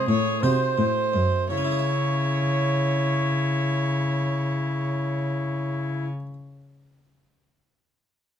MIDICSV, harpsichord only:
0, 0, Header, 1, 2, 480
1, 0, Start_track
1, 0, Key_signature, 4, "minor"
1, 0, Tempo, 700117
1, 534, Tempo, 734394
1, 1013, Time_signature, 12, 3, 24, 8
1, 5511, End_track
2, 0, Start_track
2, 0, Title_t, "Harpsichord"
2, 0, Program_c, 0, 6
2, 58, Note_on_c, 0, 45, 48
2, 271, Note_off_c, 0, 45, 0
2, 297, Note_on_c, 0, 48, 50
2, 297, Note_on_c, 0, 66, 41
2, 298, Note_on_c, 0, 63, 41
2, 301, Note_on_c, 0, 68, 43
2, 470, Note_off_c, 0, 63, 0
2, 513, Note_off_c, 0, 48, 0
2, 533, Note_on_c, 0, 45, 43
2, 747, Note_off_c, 0, 45, 0
2, 767, Note_on_c, 0, 42, 48
2, 817, Note_off_c, 0, 66, 0
2, 820, Note_off_c, 0, 68, 0
2, 986, Note_off_c, 0, 42, 0
2, 1007, Note_on_c, 0, 49, 49
2, 1054, Note_on_c, 0, 61, 47
2, 1100, Note_on_c, 0, 64, 45
2, 1144, Note_on_c, 0, 68, 47
2, 1193, Note_on_c, 0, 76, 45
2, 3980, Note_off_c, 0, 49, 0
2, 4027, Note_off_c, 0, 61, 0
2, 4073, Note_off_c, 0, 64, 0
2, 4118, Note_off_c, 0, 68, 0
2, 4166, Note_off_c, 0, 76, 0
2, 5511, End_track
0, 0, End_of_file